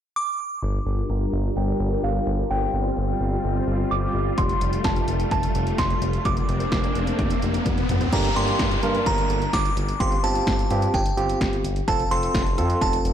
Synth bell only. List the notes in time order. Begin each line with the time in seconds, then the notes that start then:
0.16 D6
0.63 C6
1.10 A#5
1.57 G5
2.04 F5
2.50 G5
3.91 D6
4.38 C6
4.85 A5
5.32 A5
5.79 C6
6.25 D6
8.13 A#5
8.36 C6
9.07 A#5
9.54 D6
10.00 C6
10.24 A5
10.94 G5
11.88 A5
12.11 C6
12.82 A5